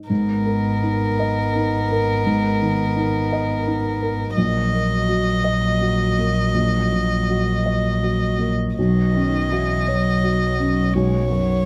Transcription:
0.00 0.12 D#4 soft
0.00 0.12 D#5 soft
0.08 4.38 G#1 soft
0.08 2.22 G#2 soft
0.08 4.32 B3 soft
0.08 4.33 B3 soft
0.08 4.33 A#4 medium
0.08 4.33 A#4 soft
0.08 4.33 D#5 soft
0.46 1.04 A#4 soft
0.83 1.40 D#4 soft
1.19 1.77 D#5 soft
1.55 2.12 D#4 soft
1.91 2.47 A#4 soft
2.26 4.33 G#2 medium
2.62 3.18 D#3 soft
2.96 3.52 D#4 soft
3.32 3.88 D#5 soft
3.67 4.23 D#4 soft
4.02 4.37 A#4 soft
4.36 8.80 A#1 medium
4.36 6.51 A#1 medium
4.36 8.53 F#3 medium
4.36 8.77 A#3 soft
4.36 8.75 F#4 soft
4.36 8.53 D#5 medium
4.36 8.73 D#5 medium
4.73 5.30 A#3 soft
5.09 5.66 F#4 soft
5.44 6.03 D#5 soft
5.81 6.40 F#4 soft
6.18 6.77 A#3 soft
6.54 8.73 A#1 soft
6.91 7.51 A#2 soft
7.29 7.88 F#4 soft
7.66 8.25 D#5 soft
8.03 8.62 F#4 soft
8.39 8.76 A#3 soft
8.76 11.65 B1 soft
8.76 10.90 B1 soft
8.76 9.16 F#3 soft
8.76 11.65 B3 soft
8.76 11.65 F#4 soft
8.76 11.65 C#5 medium
8.76 10.95 D#5 medium
9.15 9.52 D#3 soft
9.15 9.73 C#4 soft
9.51 9.90 E3 soft
9.51 10.09 F#4 soft
9.88 10.94 F#3 soft
9.88 10.44 C#5 soft
10.24 10.80 F#4 soft
10.60 11.16 C#4 soft
10.94 11.65 B1 medium
10.94 11.29 G#3 medium
10.94 11.65 C#5 medium
11.30 11.65 F#2 soft
11.30 11.65 F#3 medium

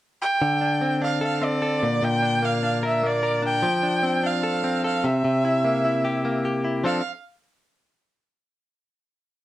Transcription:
0.22 0.98 G5 loud
0.42 3.92 D3 medium
0.61 1.01 D4 medium
0.81 1.40 C4 medium
1.02 2.22 D4 medium
1.02 1.21 F5 medium
1.21 1.61 A4 medium
1.21 1.45 F5 medium
1.42 1.86 C4 medium
1.42 2.05 D5 medium
1.62 1.86 A4 medium
1.83 2.01 A#2 medium
2.02 3.63 A#2 medium
2.02 2.47 G5 loud
2.22 2.62 D4 medium
2.42 3.02 A#3 medium
2.42 2.84 F5 medium
2.63 3.41 D4 medium
2.83 3.22 A#4 medium
2.83 3.08 E5 medium
3.03 3.67 A#3 medium
3.03 3.45 D5 medium
3.23 3.67 A#4 medium
3.42 3.67 D4 medium
3.47 4.28 G5 loud
3.62 5.08 F3 medium
3.83 4.22 D4 medium
4.03 4.64 C4 medium
4.23 5.08 D4 medium
4.23 4.85 F5 medium
4.43 4.83 A4 medium
4.64 5.64 C4 medium
4.84 5.08 A4 medium
4.84 5.07 F5 medium
5.04 5.23 C3 medium
5.04 6.45 E5 medium
5.25 6.85 C3 medium
5.45 5.84 E4 medium
5.64 6.24 A#3 medium
5.85 6.63 E4 medium
6.05 6.44 G4 medium
6.25 6.84 A#3 medium
6.45 6.86 G4 medium
6.64 6.85 E4 medium
6.84 7.00 F3 medium
6.84 7.01 C4 medium
6.84 7.01 D4 medium
6.84 7.01 A4 medium
6.84 7.04 F5 medium

